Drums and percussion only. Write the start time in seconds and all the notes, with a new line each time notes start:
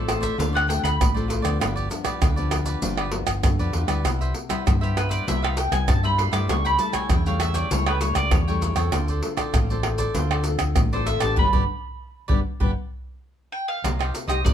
0.09 pandeiro, tamborim, maracas
0.23 pandeiro, maracas, surdo
0.40 pandeiro, maracas, surdo
0.57 pandeiro, tamborim, maracas
0.70 pandeiro, maracas
0.85 pandeiro, tamborim, maracas, surdo
1.01 pandeiro, tamborim, maracas, surdo
1.17 pandeiro, maracas
1.30 pandeiro, maracas, surdo
1.45 pandeiro, tamborim, maracas
1.61 pandeiro, tamborim, maracas, surdo
1.77 pandeiro, maracas, surdo
1.91 pandeiro, maracas
2.05 pandeiro, tamborim, maracas, surdo
2.22 pandeiro, tamborim, maracas, surdo
2.37 pandeiro, maracas
2.51 pandeiro, tamborim, maracas
2.66 pandeiro, maracas, surdo
2.82 pandeiro, maracas, surdo
2.98 pandeiro, tamborim, maracas
3.12 pandeiro
3.27 pandeiro, tamborim, maracas, surdo
3.43 pandeiro, tamborim, maracas, surdo
3.59 pandeiro, maracas
3.73 pandeiro
3.88 pandeiro, tamborim, maracas
4.05 pandeiro, tamborim, maracas, surdo
4.21 pandeiro, maracas, surdo
4.34 pandeiro
4.50 pandeiro, tamborim, maracas, surdo
4.67 pandeiro, tamborim, maracas, surdo
4.83 pandeiro, maracas
4.97 pandeiro, tamborim, maracas
5.11 pandeiro, maracas, surdo
5.28 pandeiro, maracas, surdo
5.45 pandeiro, tamborim, maracas
5.57 pandeiro, maracas
5.72 pandeiro, tamborim, maracas, surdo
5.88 pandeiro, tamborim, maracas, surdo
6.04 pandeiro, maracas
6.19 pandeiro, surdo
6.33 pandeiro, tamborim, maracas
6.49 pandeiro, tamborim, maracas, surdo
6.65 pandeiro, maracas, surdo
6.79 pandeiro, maracas
6.93 pandeiro, tamborim, maracas, surdo
7.09 pandeiro, tamborim, maracas, surdo
7.26 pandeiro, maracas
7.40 pandeiro, tamborim, maracas
7.54 pandeiro, maracas, surdo
7.71 pandeiro, maracas, surdo
7.87 pandeiro, tamborim, maracas
8.01 pandeiro, maracas
8.15 pandeiro, tamborim, maracas, surdo
8.31 pandeiro, tamborim, maracas, surdo
8.48 pandeiro, maracas
8.62 pandeiro, maracas, surdo
8.76 pandeiro, tamborim, maracas
8.92 pandeiro, tamborim, maracas, surdo
9.08 pandeiro, maracas, surdo
9.23 pandeiro
9.37 pandeiro, tamborim, maracas, surdo
9.54 pandeiro, tamborim, maracas, surdo
9.70 pandeiro, maracas
9.83 pandeiro, tamborim
9.98 pandeiro, maracas, surdo
10.15 pandeiro, maracas, surdo
10.31 pandeiro, tamborim, maracas
10.44 pandeiro, maracas
10.59 pandeiro, tamborim, maracas, surdo
10.76 pandeiro, tamborim, maracas, surdo
10.93 pandeiro, maracas
11.07 pandeiro, maracas, surdo
11.20 pandeiro, tamborim, maracas
11.37 surdo
11.53 surdo
12.29 surdo
12.61 surdo
13.84 pandeiro, tamborim, maracas, surdo
14.01 pandeiro, tamborim, maracas
14.15 pandeiro, maracas
14.29 pandeiro, tamborim, maracas, surdo
14.46 pandeiro, maracas, surdo